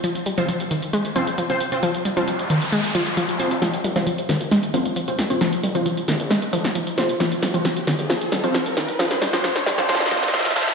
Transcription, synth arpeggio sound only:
X:1
M:4/4
L:1/16
Q:1/4=134
K:Fm
V:1 name="Synth arpeggio sound" clef=bass
F, z G, F, F, z E, z A, z F, z F, z3 | F, z G, F, F, z E, z A, z F, z F, z3 | F, z G, F, F, z E, z A, z F, z F, z3 | F, z G, F, F, z E, z A, z F, z F, z3 |
F, z G, F, F, z E, z F, z G, F, F, z E, z | F, z G, F, F, z G, F, F, z F, z F, z F, z |]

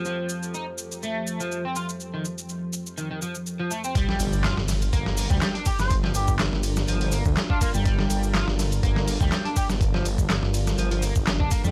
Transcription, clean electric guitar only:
X:1
M:4/4
L:1/16
Q:"Swing 16ths" 1/4=123
K:Gm
V:1 name="Clean electric guitar"
F,4 E z3 A,3 F,2 C F z | z E, z6 E, E, F, z2 F, A, C | G,4 F z3 B,3 G,2 D G z | z F, z6 F, F, B, z2 D B, G, |
G,4 F z3 B,3 G,2 D G z | z F, z6 F, F, B, z2 D B, G, |]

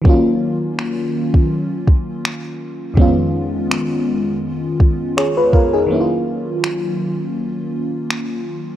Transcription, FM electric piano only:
X:1
M:4/4
L:1/16
Q:"Swing 16ths" 1/4=82
K:Ebm
V:1 name="FM electric piano"
z16 | z12 [Ad] [Fc] [FB] [EA]- | [EA] z12 z3 |]
V:2 name="FM electric piano"
[E,G,B,DF]16 | [F,,E,A,CDF]16 | [E,G,B,D_F=F]16 |]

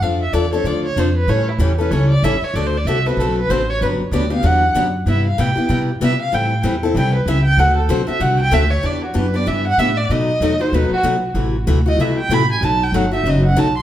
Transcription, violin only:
X:1
M:4/4
L:1/8
Q:"Swing" 1/4=191
K:Dmix
V:1 name="Violin"
=f e d ^c d c =c B | ^c E G B c d e c | (3d c d e B A B c ^c | B z d =f ^f2 z2 |
e =f g2 z2 e f | g2 z2 g B e g | f A c e f g e ^c | [K:Em] d F B d e f e d |
^d3 c B F z2 | z3 ^d e g b ^g | a g f e ^d f a c' |]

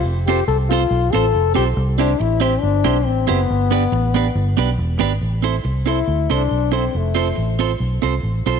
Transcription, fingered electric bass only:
X:1
M:4/4
L:1/8
Q:1/4=139
K:Am
V:1 name="Fingered electric bass" clef=bass
F,,,2 C,,2 B,,, A,,, F,,, B,,, | C,,2 A,,,2 G,,, B,,, A,,, ^F,,, | G,,,2 A,,,2 G,,, B,,, E,,, ^G,,, | A,,,2 C,,2 D,, C,, B,,,2 |
F,,,2 A,,,2 B,,, C,, A,,, B,,, |]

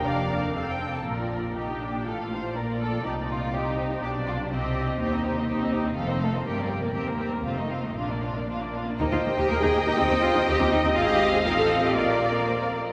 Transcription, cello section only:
X:1
M:2/4
L:1/16
Q:1/4=121
K:Bb
V:1 name="Cello section"
F,,4 F,,4 | B,,8 | A,,4 B,,4 | C,8 |
=B,,4 C,4 | E,,8 | F,,4 G,,4 | E,,4 F,,4 |
B,,6 z2 | [K:Eb] E F2 G B A2 G | E2 F2 G2 E2 | F G2 A B =A2 G |
F4 z4 |]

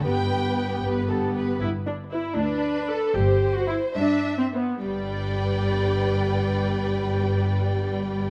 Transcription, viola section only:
X:1
M:6/8
L:1/16
Q:3/8=72
K:G
V:1 name="Viola section"
[B,G]2 [B,G]6 [B,G]4 | E2 D2 E2 D4 A2 | G3 F E2 D3 C B,2 | G,12- |
G,12 |]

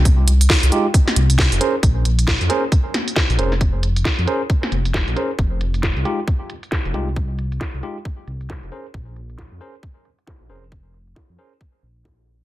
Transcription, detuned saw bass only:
X:1
M:4/4
L:1/16
Q:"Swing 16ths" 1/4=135
K:Bbdor
V:1 name="Detuned saw bass" clef=bass
C,,4 z C,, z4 C,,3 F,,, z2 | B,,,4- B,,, F,, z6 z B,,, F,,,2- | F,,,4 z F,, z4 F,,,3 B,,, z2 | F,,,4- F,,, C,, z6 z F,,, C,,2- |
C,,4 z C,, z4 C,,3 F,,, z2 | B,,,4- B,,, F,, z6 z B,,, F,,,2- | F,,,4 z F,, z4 B,,,6 |]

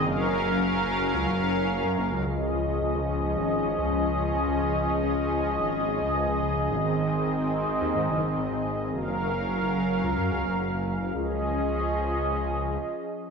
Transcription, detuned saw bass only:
X:1
M:4/4
L:1/16
Q:1/4=108
K:Db
V:1 name="Detuned saw bass" clef=bass
G,,, G,,, G,,, G,,, G,,, G,,, G,,, G,,, D,, G,,, G,,, G,,, G,,, G,, G,,, D,, | D,, D,, D,, D,, D,, D,, D,, D,, A,,, A,,, A,,, D,, D,, D,, D,, D,, | D,, D,, D,, D,, D,, D,, D,, D,, A,,, A,,, A,,, D,, D,, D,, D,, D,, | A,,, A,,, A,,, A,,, A,,, A,,, A,,, A,,, E,, A,, G,,, A,,, A,,, A,,, A,,, A,,, |
G,,, G,,, G,,, G,,, G,,, G,,, G,,, G,,, D,, G,, D,, G,,, G,,, G,,, G,,, G,,, | D,,12 z4 |]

